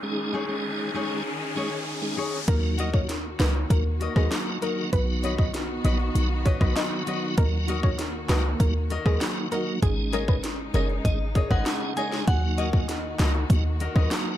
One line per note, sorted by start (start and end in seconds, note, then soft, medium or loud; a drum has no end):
0.00 2.45 D#3 medium
0.00 0.45 G#3 medium
0.00 0.45 C#4 medium
0.00 2.45 C#4 medium
0.00 0.45 D#4 medium
0.00 2.45 G#4 medium
0.00 0.45 G#4 loud
0.00 riser medium
0.33 0.54 D#4 medium
0.33 0.55 G#4 medium
0.33 0.55 C#5 medium
0.49 0.91 G#3 medium
0.49 0.91 C#4 medium
0.49 0.91 D#4 medium
0.49 0.91 G#4 medium
0.94 1.23 G#3 medium
0.94 1.23 C#4 medium
0.94 1.15 D#4 medium
0.94 1.23 D#4 medium
0.94 1.16 G#4 medium
0.94 1.23 G#4 medium
0.94 1.16 C#5 medium
1.55 1.70 G#3 medium
1.55 1.70 C#4 medium
1.55 1.77 D#4 medium
1.55 1.70 D#4 medium
1.55 1.77 G#4 medium
1.55 1.70 G#4 medium
1.55 1.77 C#5 medium
2.02 2.16 G#3 medium
2.02 2.16 C#4 medium
2.02 2.16 D#4 medium
2.02 2.16 G#4 medium
2.17 2.38 D#4 medium
2.17 2.38 G#4 medium
2.17 2.39 C#5 medium
2.48 3.36 D#2 loud
2.48 9.79 D#3 medium
2.48 2.90 F#3 medium
2.48 4.90 A#3 medium
2.48 2.90 A#3 medium
2.48 2.90 D#4 medium
2.48 9.79 F#4 loud
2.48 2.90 F#4 loud
2.48 2.68 A#4 loud
2.48 kick loud
2.48 closed hi-hat medium
2.78 2.99 F#4 medium
2.78 3.00 A#4 medium
2.78 3.00 D#5 medium
2.78 closed hi-hat medium
2.93 3.07 F#3 medium
2.93 3.07 A#3 medium
2.93 3.07 D#4 medium
2.93 3.08 F#4 medium
2.93 3.04 C#5 medium
2.93 kick loud
3.09 snare medium
3.09 closed hi-hat medium
3.39 3.66 C#2 medium
3.39 3.53 F#3 medium
3.39 3.53 A#3 medium
3.39 3.53 D#4 medium
3.39 3.60 F#4 medium
3.39 3.53 F#4 medium
3.39 3.55 A#4 medium
3.39 3.50 B4 medium
3.39 3.53 D#5 loud
3.39 snare loud
3.39 clap loud
3.39 closed hi-hat medium
3.55 muted nylon-string guitar stroke medium
3.70 4.09 D#2 loud
3.70 3.84 F#3 loud
3.70 3.84 A#3 medium
3.70 3.84 D#4 medium
3.70 3.84 F#4 loud
3.70 3.80 A#4 medium
3.70 kick loud
3.70 closed hi-hat loud
4.00 4.16 F#4 medium
4.00 4.15 A#4 medium
4.00 4.14 D#5 loud
4.00 closed hi-hat medium
4.16 4.29 D#2 medium
4.16 4.58 F#3 medium
4.16 4.58 A#3 medium
4.16 4.59 D#4 medium
4.16 4.59 F#4 medium
4.16 4.33 F#4 medium
4.16 4.26 G#4 medium
4.16 4.33 A#4 medium
4.16 4.32 D#5 medium
4.16 kick medium
4.16 cross-stick medium
4.32 snare loud
4.32 clap medium
4.32 closed hi-hat medium
4.62 4.90 F#3 medium
4.62 4.90 A#3 medium
4.62 4.90 D#4 medium
4.62 4.83 F#4 medium
4.62 4.90 F#4 medium
4.62 4.72 A#4 medium
4.62 4.83 A#4 medium
4.62 4.84 D#5 medium
4.62 closed hi-hat medium
4.92 5.81 B1 loud
4.92 5.35 F#3 medium
4.92 5.35 B3 medium
4.92 7.35 B3 medium
4.92 5.35 D#4 medium
4.92 5.35 F#4 loud
4.92 5.03 B4 loud
4.92 kick loud
4.92 closed hi-hat medium
5.23 5.44 F#4 medium
5.23 5.44 B4 medium
5.23 5.33 C#5 medium
5.23 5.45 D#5 medium
5.23 closed hi-hat medium
5.38 5.52 F#3 medium
5.38 5.52 B3 medium
5.38 5.52 D#4 medium
5.38 5.53 F#4 medium
5.38 5.49 D#5 medium
5.38 kick loud
5.54 snare medium
5.54 closed hi-hat medium
5.84 6.10 A#1 loud
5.84 5.98 F#3 medium
5.84 5.98 B3 medium
5.84 5.98 D#4 medium
5.84 6.05 F#4 medium
5.84 5.98 F#4 medium
5.84 5.99 B4 medium
5.84 5.95 D#5 medium
5.84 5.98 D#5 medium
5.84 closed hi-hat medium
5.99 muted nylon-string guitar stroke soft
6.15 6.54 B1 loud
6.15 6.29 F#3 loud
6.15 6.29 B3 medium
6.15 6.29 D#4 medium
6.15 6.29 F#4 loud
6.15 closed hi-hat loud
6.45 6.61 F#4 medium
6.45 6.60 B4 medium
6.45 6.56 C#5 medium
6.45 6.59 D#5 loud
6.45 kick loud
6.45 closed hi-hat medium
6.61 6.74 B1 medium
6.61 7.03 F#3 medium
6.61 7.03 B3 medium
6.61 7.03 D#4 medium
6.61 7.03 F#4 medium
6.61 6.78 F#4 medium
6.61 6.78 B4 medium
6.61 6.77 D#5 medium
6.61 kick medium
6.61 cross-stick medium
6.76 7.20 D#5 medium
6.76 snare loud
6.76 clap medium
6.76 closed hi-hat medium
7.06 7.35 F#3 medium
7.06 7.35 B3 medium
7.06 7.35 D#4 medium
7.06 7.28 F#4 medium
7.06 7.35 F#4 medium
7.06 7.28 B4 medium
7.06 7.29 D#5 medium
7.06 closed hi-hat medium
7.37 8.26 D#2 loud
7.37 7.80 F#3 medium
7.37 7.80 A#3 medium
7.37 9.80 A#3 medium
7.37 7.80 D#4 medium
7.37 7.80 F#4 loud
7.37 7.57 A#4 loud
7.37 kick loud
7.37 closed hi-hat medium
7.68 7.89 F#4 loud
7.68 7.89 A#4 loud
7.68 7.90 D#5 loud
7.68 closed hi-hat medium
7.83 7.97 F#3 medium
7.83 7.97 A#3 medium
7.83 7.97 D#4 medium
7.83 7.97 F#4 medium
7.83 7.93 C#5 medium
7.83 kick loud
7.99 snare medium
7.99 closed hi-hat medium
8.29 8.55 C#2 medium
8.29 8.43 F#3 medium
8.29 8.43 A#3 medium
8.29 8.43 D#4 medium
8.29 8.50 F#4 medium
8.29 8.43 F#4 medium
8.29 8.44 A#4 loud
8.29 8.39 B4 medium
8.29 8.43 D#5 loud
8.29 snare loud
8.29 clap medium
8.29 closed hi-hat medium
8.44 muted nylon-string guitar stroke soft
8.60 8.99 D#2 loud
8.60 8.74 F#3 loud
8.60 8.74 A#3 medium
8.60 8.74 D#4 medium
8.60 8.74 F#4 loud
8.60 8.70 A#4 medium
8.60 kick loud
8.60 closed hi-hat loud
8.90 9.06 F#4 medium
8.90 9.05 A#4 medium
8.90 9.04 D#5 loud
8.90 closed hi-hat medium
9.05 9.19 D#2 medium
9.05 9.48 F#3 medium
9.05 9.48 A#3 medium
9.05 9.48 D#4 medium
9.05 9.48 F#4 medium
9.05 9.23 F#4 medium
9.05 9.16 G#4 medium
9.05 9.23 A#4 medium
9.05 9.22 D#5 medium
9.05 kick medium
9.05 cross-stick loud
9.21 snare loud
9.21 clap medium
9.21 closed hi-hat medium
9.51 9.80 F#3 medium
9.51 9.80 A#3 medium
9.51 9.80 D#4 medium
9.51 9.72 F#4 medium
9.51 9.80 F#4 medium
9.51 9.62 A#4 medium
9.51 9.73 A#4 medium
9.51 9.73 D#5 loud
9.51 closed hi-hat medium
9.82 10.70 G#1 loud
9.82 12.25 C#3 medium
9.82 10.25 G#3 medium
9.82 12.25 G#3 medium
9.82 10.25 C#4 medium
9.82 12.25 D#4 medium
9.82 10.25 D#4 medium
9.82 9.92 G#4 loud
9.82 10.25 G#4 loud
9.82 kick loud
9.82 closed hi-hat medium
10.12 10.34 G#4 medium
10.12 10.23 A#4 medium
10.12 10.34 C#5 medium
10.12 10.35 D#5 medium
10.12 closed hi-hat medium
10.28 10.42 G#3 medium
10.28 10.42 C#4 medium
10.28 10.42 D#4 medium
10.28 10.42 G#4 medium
10.28 10.38 B4 medium
10.28 kick loud
10.44 snare medium
10.44 closed hi-hat medium
10.74 11.00 F#1 loud
10.74 10.88 G#3 medium
10.74 10.88 C#4 medium
10.74 10.88 D#4 medium
10.74 10.95 G#4 medium
10.74 10.88 G#4 medium
10.74 10.84 A#4 medium
10.74 10.89 C#5 medium
10.74 10.88 D#5 loud
10.74 closed hi-hat medium
10.89 muted nylon-string guitar stroke soft
11.05 11.44 G#1 loud
11.05 11.19 G#3 medium
11.05 11.19 C#4 medium
11.05 11.19 D#4 medium
11.05 11.19 G#4 loud
11.05 11.52 D#5 loud
11.05 kick loud
11.05 closed hi-hat loud
11.35 11.51 G#4 medium
11.35 11.50 C#5 medium
11.35 11.49 D#5 loud
11.35 kick loud
11.35 closed hi-hat medium
11.50 11.64 G#1 medium
11.50 11.93 G#3 medium
11.50 11.93 C#4 medium
11.50 11.93 D#4 medium
11.50 11.93 G#4 medium
11.50 11.68 G#4 medium
11.50 11.67 C#5 medium
11.50 11.67 D#5 medium
11.50 11.98 F#5 loud
11.50 kick medium
11.50 cross-stick medium
11.66 snare loud
11.66 clap medium
11.66 closed hi-hat medium
11.96 12.25 G#3 medium
11.96 12.25 C#4 medium
11.96 12.25 D#4 medium
11.96 12.18 G#4 medium
11.96 12.25 G#4 medium
11.96 12.18 C#5 medium
11.96 12.18 D#5 medium
11.96 12.28 G#5 loud
11.96 closed hi-hat medium
12.12 snare medium
12.27 13.15 D#2 loud
12.27 14.37 D#3 medium
12.27 12.70 F#3 medium
12.27 12.70 A#3 medium
12.27 14.37 A#3 medium
12.27 12.70 D#4 medium
12.27 14.37 F#4 medium
12.27 12.70 F#4 loud
12.27 12.59 F#5 loud
12.27 kick loud
12.27 closed hi-hat medium
12.58 12.79 F#4 medium
12.58 12.79 A#4 medium
12.58 13.77 D#5 medium
12.58 12.80 D#5 medium
12.58 closed hi-hat medium
12.73 12.87 F#3 medium
12.73 12.87 A#3 medium
12.73 12.87 D#4 medium
12.73 12.87 F#4 medium
12.73 kick loud
12.89 snare medium
12.89 closed hi-hat medium
13.19 13.45 C#2 loud
13.19 13.33 F#3 medium
13.19 13.33 A#3 medium
13.19 13.33 D#4 medium
13.19 13.40 F#4 medium
13.19 13.33 F#4 medium
13.19 13.34 A#4 medium
13.19 13.33 D#5 medium
13.19 snare loud
13.19 clap loud
13.19 closed hi-hat medium
13.34 muted nylon-string guitar stroke medium
13.50 13.89 D#2 loud
13.50 13.64 F#3 medium
13.50 13.64 A#3 medium
13.50 13.64 D#4 medium
13.50 13.64 F#4 loud
13.50 kick loud
13.50 closed hi-hat medium
13.80 13.96 F#4 medium
13.80 13.95 A#4 medium
13.80 13.94 D#5 medium
13.80 closed hi-hat medium
13.95 14.09 D#2 medium
13.95 14.37 F#3 medium
13.95 14.37 A#3 medium
13.95 14.37 D#4 medium
13.95 14.37 F#4 medium
13.95 14.13 F#4 medium
13.95 14.12 A#4 medium
13.95 14.12 D#5 medium
13.95 kick medium
13.95 cross-stick medium
14.11 snare loud
14.11 clap medium
14.11 closed hi-hat medium